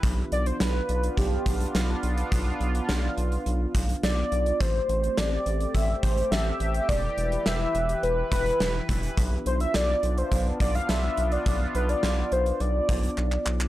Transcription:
0.03 analog synth bass B1, analog synth pad B3 D4 F4, kick, closed hi-hat
0.32 analog synth bass B1, soft synth lead D5, closed hi-hat
0.46 soft synth lead C5, closed hi-hat
0.60 analog synth bass B1, soft synth lead B4, snare, closed hi-hat
0.89 analog synth bass B1, closed hi-hat
1.03 closed hi-hat
1.17 analog synth bass B1, soft synth lead G4, kick, closed hi-hat
1.46 analog synth bass B1, kick, closed hi-hat
1.60 closed hi-hat
1.75 analog synth bass B1, snare, closed hi-hat
2.03 analog synth bass B1, closed hi-hat
2.18 closed hi-hat
2.32 analog synth bass B1, kick, closed hi-hat
2.60 analog synth bass B1, closed hi-hat
2.75 closed hi-hat
2.89 analog synth bass B1, snare, closed hi-hat
3.18 analog synth bass B1, closed hi-hat
3.32 closed hi-hat
3.46 analog synth bass B1, closed hi-hat
3.75 analog synth bass B1, kick, closed hi-hat
3.89 closed hi-hat
4.03 analog synth bass B1, soft synth lead D5, snare, closed hi-hat
4.32 analog synth bass B1, closed hi-hat
4.46 closed hi-hat
4.60 analog synth bass A1, analog synth pad A3 C4 G4, soft synth lead C5, kick, closed hi-hat
4.89 analog synth bass A1, closed hi-hat
5.04 closed hi-hat
5.17 analog synth bass A1, soft synth lead D5, snare, closed hi-hat
5.46 analog synth bass A1, closed hi-hat
5.60 closed hi-hat
5.74 analog synth bass A1, soft synth lead E5, kick, closed hi-hat
6.03 analog synth bass A1, soft synth lead C5, kick, closed hi-hat
6.17 closed hi-hat
6.31 analog synth bass A1, soft synth lead E5, snare, closed hi-hat
6.60 analog synth bass A1, closed hi-hat
6.74 closed hi-hat
6.89 analog synth bass E1, analog synth pad E3 E4 B4, soft synth lead D5, kick, closed hi-hat
7.18 analog synth bass E1, closed hi-hat
7.32 closed hi-hat
7.46 analog synth bass E1, soft synth lead E5, snare, closed hi-hat
7.75 analog synth bass E1, closed hi-hat
7.89 closed hi-hat
8.03 analog synth bass E1, soft synth lead B4, closed hi-hat
8.32 analog synth bass E1, soft synth lead B4, kick, closed hi-hat
8.46 closed hi-hat
8.60 analog synth bass E1, snare, closed hi-hat
8.89 analog synth bass E1, kick, closed hi-hat
9.03 closed hi-hat
9.17 analog synth bass B1, analog synth pad B3 D4 F4, kick, closed hi-hat
9.46 analog synth bass B1, soft synth lead C5, closed hi-hat
9.60 soft synth lead E5, closed hi-hat
9.74 analog synth bass B1, soft synth lead D5, snare, closed hi-hat
10.03 analog synth bass B1, closed hi-hat
10.18 soft synth lead C5, closed hi-hat
10.32 analog synth bass B1, kick, closed hi-hat
10.60 analog synth bass B1, soft synth lead D5, kick, closed hi-hat
10.75 soft synth lead F5, closed hi-hat
10.89 analog synth bass B1, soft synth lead E5, snare, closed hi-hat
11.17 analog synth bass B1, closed hi-hat
11.32 soft synth lead D5, closed hi-hat
11.46 analog synth bass B1, kick, closed hi-hat
11.75 analog synth bass B1, soft synth lead B4, closed hi-hat
11.89 soft synth lead D5, closed hi-hat
12.03 analog synth bass B1, snare, closed hi-hat
12.32 analog synth bass B1, soft synth lead C5, closed hi-hat
12.46 closed hi-hat
12.60 analog synth bass B1, soft synth lead D5, closed hi-hat
12.89 analog synth bass B1, kick, closed hi-hat
13.03 closed hi-hat
13.18 analog synth bass B1, clap
13.32 clap
13.46 analog synth bass B1, clap
13.61 clap

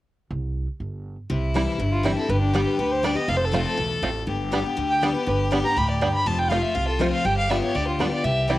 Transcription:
0.30 upright bass C2
0.80 upright bass G1
1.30 upright bass C2, steel-string acoustic guitar C3, fiddle E4
1.54 steel-string acoustic guitar E3 G3 C4 E4, five-string banjo G3 C4 E4
1.79 upright bass G1, steel-string acoustic guitar G2
1.92 fiddle F4
2.03 steel-string acoustic guitar E3 G3 C4 E4, five-string banjo G3 C4 E4, fiddle G4
2.17 steel-string acoustic guitar C4 E4, fiddle A4
2.28 upright bass G1, steel-string acoustic guitar G2, fiddle G4 B4
2.41 fiddle D4
2.53 steel-string acoustic guitar D3 G3 B3 G4, five-string banjo G3 B3 D4, fiddle G4
2.66 fiddle B4
2.78 upright bass D2, steel-string acoustic guitar D3, fiddle B4
2.91 fiddle C5
3.03 steel-string acoustic guitar D3 G3 B3 G4, five-string banjo G3 B3 D4, fiddle D5
3.15 steel-string acoustic guitar B3 G4, fiddle D#5
3.28 upright bass F1, steel-string acoustic guitar F2, fiddle A4 F5
3.37 fiddle C5
3.45 fiddle A4
3.52 steel-string acoustic guitar F3 A3 C4 F4, five-string banjo A3 C4 F4, fiddle F4
3.66 fiddle A4
3.77 upright bass B1, steel-string acoustic guitar E2
4.02 upright bass A1, steel-string acoustic guitar F2, five-string banjo A3 C4 F4
4.27 upright bass G1, steel-string acoustic guitar G2, fiddle G4
4.51 steel-string acoustic guitar D3 G3 B3 G4, five-string banjo G3 B3 D4
4.64 steel-string acoustic guitar B3 G4
4.77 upright bass D2, steel-string acoustic guitar D3
4.90 fiddle G5
5.01 steel-string acoustic guitar D3 G3 B3 G4, five-string banjo G3 B3 D4, fiddle D5
5.14 steel-string acoustic guitar B3 G4, fiddle B4
5.26 upright bass G1, steel-string acoustic guitar G2, fiddle B4
5.51 steel-string acoustic guitar D3 G3 B3 G4, five-string banjo G3 B3 D4
5.63 steel-string acoustic guitar B3 G4, fiddle A#5
5.76 upright bass D2, steel-string acoustic guitar A2, fiddle B5
5.90 fiddle D5
6.01 steel-string acoustic guitar G2, five-string banjo G3 B3 D4, fiddle G5
6.14 fiddle B5
6.26 upright bass F1, steel-string acoustic guitar F2, fiddle F4 A5
6.39 fiddle G5
6.50 steel-string acoustic guitar F3 A3 C4 F4, five-string banjo A3 C4 F4, fiddle F5
6.63 fiddle E5
6.75 upright bass C2, steel-string acoustic guitar C3, fiddle F5
6.88 fiddle A4
6.99 steel-string acoustic guitar F3 A3 C4 F4, five-string banjo A3 C4 F4, fiddle C5
7.12 fiddle F5
7.24 upright bass G1, steel-string acoustic guitar G3, fiddle G4 G5
7.38 fiddle F5
7.49 steel-string acoustic guitar G3 B3 F4, five-string banjo G3 B3 D4, fiddle E5
7.62 steel-string acoustic guitar B3 F4, fiddle C#5
7.75 upright bass D2, steel-string acoustic guitar D3, fiddle D5
7.88 fiddle F4
7.99 steel-string acoustic guitar G3 B3 F4, five-string banjo G3 B3 D4, fiddle A4
8.11 steel-string acoustic guitar B3 F4, fiddle D5
8.24 upright bass C2, steel-string acoustic guitar C3, fiddle G4 E5
8.48 steel-string acoustic guitar E3 G3 C4 E4, five-string banjo G3 C4 E4, fiddle D5

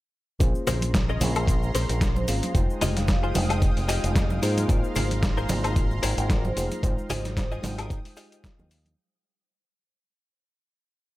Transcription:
0.40 fingered electric bass A#1, analog synth pad G#3 C#4 A#5 C6, reed electric piano A#3 C#4 F4 G#4 C5, kick, closed hi-hat, cabasa
0.55 cabasa
0.67 fingered electric bass A#1, clean electric guitar C#4 G#4 A#4 C5, open hi-hat, low conga, cabasa
0.81 closed hi-hat, high conga, cabasa
0.94 muted clean electric guitar stroke, kick, snare, closed hi-hat, cabasa
1.09 clean electric guitar C#4 G#4 A#4 D#5, cabasa
1.20 fingered electric bass A#1, reed electric piano A#3 C#4 F4 G#4 C5, open hi-hat, high conga, low conga, cabasa
1.35 clean electric guitar C#4 G#4 A#4 C5, closed hi-hat, cabasa, high woodblock
1.48 kick, closed hi-hat, cabasa
1.63 cabasa
1.75 fingered electric bass A#1, clean electric guitar C#4 G#4 A#4 C5, open hi-hat, cabasa
1.89 fingered electric bass A#1, closed hi-hat, cabasa
2.01 kick, snare, closed hi-hat, cabasa
2.16 vibraphone C5, high conga, cabasa
2.27 fingered electric bass G#1, reed electric piano A#3 C#4 F4 G#4 C5, vibraphone F5, open hi-hat, cabasa
2.43 closed hi-hat, high conga, cabasa
2.54 fingered electric bass F1, reed electric piano G#3 D#4 F4 C5 G5, analog synth pad F5 G5 D#6, kick, closed hi-hat, cabasa
2.70 cabasa
2.81 fingered electric bass F1, clean electric guitar F4 G4 G#4 D#5, open hi-hat, low conga, cabasa
2.96 vibraphone F5, snare, closed hi-hat, high conga, cabasa
3.08 kick, snare, closed hi-hat, cabasa
3.23 clean electric guitar F4 G4 G#4 C5, cabasa
3.34 fingered electric bass F1, reed electric piano G#3 D#4 F4 C5 G5, open hi-hat, high conga, low conga, cabasa
3.50 clean electric guitar F4 G4 G#4 D#5, closed hi-hat, cabasa, high woodblock
3.62 kick, closed hi-hat, cabasa
3.77 fingered electric bass F1, open hi-hat, cabasa
3.88 clean electric guitar F4 G4 G#4 D#5, open hi-hat, cabasa
4.04 fingered electric bass F1, closed hi-hat, cabasa
4.16 kick, snare, closed hi-hat, cabasa
4.30 high conga, cabasa
4.42 fingered electric bass G#2, reed electric piano A#3 D#4 F4 G#4 C5, clean electric guitar F4 G#4 A#4 C5, analog synth pad A#5 C6, open hi-hat, cabasa
4.57 closed hi-hat, high conga, cabasa
4.68 fingered electric bass G#1, reed electric piano A#3 D#4 F4 G#4 C5, kick, closed hi-hat, cabasa
4.84 cabasa
4.95 fingered electric bass G#1, clean electric guitar F4 G#4 A#4 C5, open hi-hat, low conga, cabasa
5.11 closed hi-hat, high conga, cabasa
5.22 muted clean electric guitar stroke, kick, snare, closed hi-hat, cabasa
5.37 clean electric guitar F4 G#4 A#4 C5, cabasa
5.48 fingered electric bass G#1, reed electric piano A#3 D#4 F4 G#4 C5, open hi-hat, high conga, low conga, cabasa
5.64 clean electric guitar F4 G#4 A#4 C5, closed hi-hat, cabasa, high woodblock
5.76 kick, closed hi-hat, cabasa
5.91 cabasa
6.03 fingered electric bass G#1, clean electric guitar F4 G#4 A#4 C5, open hi-hat, cabasa
6.18 fingered electric bass G#1, closed hi-hat, cabasa
6.30 kick, snare, closed hi-hat, cabasa
6.44 vibraphone C5, high conga, cabasa
6.56 fingered electric bass F1, reed electric piano A#3 D#4 F4 G#4 C5, open hi-hat, cabasa
6.71 closed hi-hat, high conga, cabasa
6.82 fingered electric bass G#1, reed electric piano G#3 D#4 F4 C5 G5, vibraphone C5, analog synth pad G5 D#6, kick, closed hi-hat, cabasa
6.98 vibraphone C5, cabasa
7.10 fingered electric bass G#1, clean electric guitar F4 G4 G#4 D#5, vibraphone C5, open hi-hat, low conga, cabasa
7.25 snare, closed hi-hat, high conga, cabasa
7.36 muted clean electric guitar stroke, kick, snare, closed hi-hat, cabasa
7.52 clean electric guitar F4 G4 G#4 D#5, cabasa
7.62 fingered electric bass G#1, reed electric piano G#3 D#4 F4 C5 G5, open hi-hat, high conga, low conga, cabasa
7.78 clean electric guitar F4 G4 G#4 A#4, closed hi-hat, cabasa, high woodblock
7.90 kick, closed hi-hat, cabasa
8.05 open hi-hat, cabasa
8.17 clean electric guitar F4 G4 G#4 D#5, open hi-hat, cabasa
8.32 closed hi-hat, cabasa
8.44 kick, snare, closed hi-hat, cabasa
8.59 fingered electric bass D#2, high conga, cabasa
8.71 open hi-hat, cabasa
8.85 closed hi-hat, high conga, cabasa

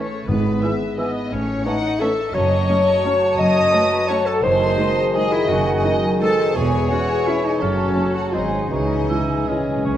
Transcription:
Already playing: harp A2 A3 C#4 C#5 C#6, french horn section A3, clarinet A3, violin section A4 C#5
0.11 harp A4
0.27 double bass section G#1, cello section G#2, harp G#2, timpani G#2, clarinet B3, french horn section B3, violin section B4
0.44 harp B3
0.62 bassoon E3, viola section B3 E4, harp G#4, violin section E5, cor anglais E5, flute section G#5
0.81 harp B4
0.98 bassoon E3, clarinet B3, french horn section B3, viola section B3 E4, violin section B4 D#5, harp E5, cor anglais E5, flute section G#5
1.15 harp B4
1.31 double bass section A1, cello section A2, harp A2, french horn section C#4, clarinet C#4, violin section C#5
1.48 harp A3
1.65 bassoon E3, viola section A3 C#4, french horn section D#4, clarinet D#4, harp C#5, cor anglais C#5, violin section D#5 F#5, flute section A5
1.83 harp A4
2.00 bassoon E3, viola section A3 C#4, clarinet A4, french horn section A4, cor anglais C#5, harp E5, violin section E5 A5, flute section A5
2.17 harp A4
2.33 double bass section F#1, harp F#2, cello section F#2, bassoon F#3, clarinet C#5, french horn section C#5, cor anglais C#5, violin section D#5 C#6, flute section A5
2.51 harp A3
2.69 viola section A3 C#4, harp C#5
2.86 harp A4
3.04 viola section A3 C#4, violin section C#5, harp F#5
3.21 harp A4
3.37 double bass section F#1, harp F#2, cello section F#2, clarinet D#5, french horn section D#5, violin section D#6
3.55 harp A3
3.72 viola section A3 C#4, violin section B4, harp C#5
3.90 harp A4
4.08 viola section A3 C#4, violin section A4 C#6, french horn section C#5, clarinet C#5, harp F#5
4.25 clarinet A4, harp A4, french horn section A4, violin section A5
4.42 double bass section F#1, harp F#2, cello section F#2, bassoon D#3, violin section G#4 C6, french horn section C5, clarinet C5, cor anglais D#5
4.60 harp G#3
4.78 viola section G#3 D#4, harp D#5, violin section D#5
4.96 harp G#4
5.14 viola section G#3 D#4, french horn section G#4, clarinet G#4, harp D#5, flute section G#5, violin section G#5
5.32 clarinet E4, french horn section E4, harp G#4, violin section E5
5.49 double bass section F#1, cello section F#2, harp F#2, clarinet F#4, french horn section F#4, violin section F#5
5.67 harp G#3
5.83 viola section G#3 D#4, harp D#5, violin section D#5
6.03 harp G#4
6.20 viola section G#3 D#4, french horn section A4, clarinet A4, violin section C5 A5, harp D#5
6.38 harp G#4
6.55 double bass section E1, cello section E2, harp E2, bassoon E3, french horn section G#4, clarinet G#4, violin section C#5 G#5, cor anglais C#5, flute section G#5
6.72 harp G#3
6.90 viola section G#3 C#4, french horn section F#4, clarinet F#4, harp C#5, violin section F#5
7.09 harp G#4
7.27 viola section G#3 C#4, clarinet E4, french horn section E4, violin section E5, harp G#5
7.44 french horn section D#4, clarinet D#4, harp G#4, violin section D#5
7.61 double bass section F#1, harp F#2, cello section F#2, bassoon F#3, clarinet C#4, french horn section C#4, violin section A4 C#5, flute section A5
7.78 harp A3
7.96 viola section A3 C#4, harp C#5
8.15 french horn section F#4, clarinet F#4, harp A4, violin section F#5
8.33 double bass section G#1, harp G#2, cello section G#2, viola section F#3 C4, french horn section D#4, clarinet D#4, violin section G#4 D#5, cor anglais C5, flute section G#5
8.53 harp F#4 C5
8.70 double bass section C#2, harp C#3, cello section C#3, timpani C#3, bassoon E3, french horn section D#4, clarinet D#4, violin section G#4 D#5, cor anglais C#5, flute section G#5
8.88 timpani C#3, harp G#3
8.95 timpani C#3
9.03 timpani C#3
9.09 timpani C#3, viola section E3 G#3, harp C#5, cor anglais E5
9.21 timpani C#3
9.28 timpani C#3, harp G#4
9.37 timpani C#3
9.45 timpani C#3, french horn section C#4, clarinet C#4, violin section C#5, cor anglais D#5, harp E5
9.49 timpani C#3, viola section E3 G#3
9.61 timpani C#3
9.67 timpani C#3, harp G#4
9.77 timpani C#3
9.85 double bass section C#2, timpani C#3, cello section C#3, harp C#3, cor anglais C#5
9.92 timpani C#3

